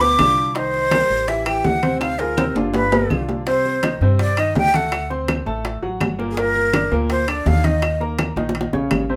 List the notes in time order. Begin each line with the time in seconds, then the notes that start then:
Already playing: D2
0.00 B2 B3 B4 D6, high conga
0.18 C2 D3 D4 F4, high bongo, low bongo, high conga, high timbale, low timbale, claves
0.37 high bongo
0.55 D#3 D#4 C5 D#5, high bongo, high conga, high timbale
0.73 high bongo, high conga
0.91 G3 G4 A#4, high bongo, high conga, high timbale, low timbale, claves
1.10 A1, high bongo
1.28 E3 E4 G4 E5, high bongo, high conga, high timbale
1.46 E3 E4 G4 G5, high conga, high timbale, claves
1.64 D2 F#5, high bongo, low bongo, high conga, low timbale
1.83 C3 C4 C5, high bongo, high conga, high timbale
2.01 F5, high bongo, high conga, high timbale, claves
2.19 F3 F4 G#4 A#4, high bongo, high conga, high timbale
2.37 C3 C4 C5, high bongo, high conga, high timbale, claves
2.55 G1 D3 D4 F4, high bongo, high conga, low timbale
2.74 B4, high bongo, high conga, low timbale
2.92 B2 B3 B4, high conga, low timbale
3.10 C2 D3 D4 F4, high bongo, low bongo, high conga, claves
3.29 high bongo, high conga, low timbale
3.47 C3 C4 C5, high bongo, high conga, high timbale
3.65 high bongo, high conga
3.83 D#3 D#4 D#5, high bongo, high conga, high timbale, low timbale, claves
4.01 G2 C3 C4 C5, high bongo
4.19 D5, high bongo, high conga, high timbale
4.37 D#3 D#4 D#5, high conga, high timbale, claves
4.55 D2 G5, high bongo, low bongo, high conga, low timbale
4.74 A3 A4 F#5 A5, high bongo, high conga, high timbale
4.92 high bongo, high conga, high timbale, claves
5.10 C4 C5 C6, high bongo, high conga
5.28 high bongo, high conga, high timbale, low timbale, claves
5.46 A1 A3 A4 A5, high bongo, high conga
5.65 high bongo, high conga, high timbale
5.82 A1 F#3 F#4 F#5, high conga
6.00 G1, high bongo, low bongo, high conga, high timbale, low timbale, claves
6.19 A#2 A#3 A#4, high bongo, high conga
6.31 G#4
6.37 A#2 A#3 A#4, high bongo, high conga, high timbale
6.55 high bongo, high conga
6.73 D3 D4 D5, high bongo, high conga, high timbale, low timbale, claves
6.91 D2 A#2 A#3 A#4, high bongo
7.10 C5, high bongo, high conga, high timbale
7.28 D3 D4 D5, high conga, high timbale, claves
7.46 D#2 F5, high bongo, low bongo, high conga, low timbale
7.64 D#3 D#4 D#5, high bongo, high conga, high timbale
7.82 high bongo, high timbale, claves
8.00 A#3 A#4 A#5, high bongo, high conga
8.19 high bongo, high conga, high timbale, low timbale, claves
8.36 A#1 D#3 D#4 D#5, high bongo, high conga
8.49 high bongo
8.55 high conga, high timbale
8.61 high bongo
8.73 A#1 C#3 C#4 C#5, low bongo, high conga
8.91 G#1, high conga, high timbale, low timbale, claves
9.09 C3 C4 C5, high conga